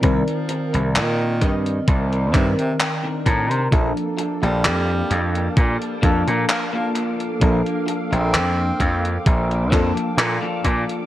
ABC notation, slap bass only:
X:1
M:4/4
L:1/16
Q:"Swing 16ths" 1/4=65
K:Bb
V:1 name="Slap bass" clef=bass
C,, z2 C,, B,,2 G,,2 C,,2 G,, z3 A,, C, | B,,, z2 B,,, F,,2 F,,2 B,, z F,, B,, z4 | B,,, z2 B,,, F,,2 F,,2 B,,,2 F,, z B,, z B,, z |]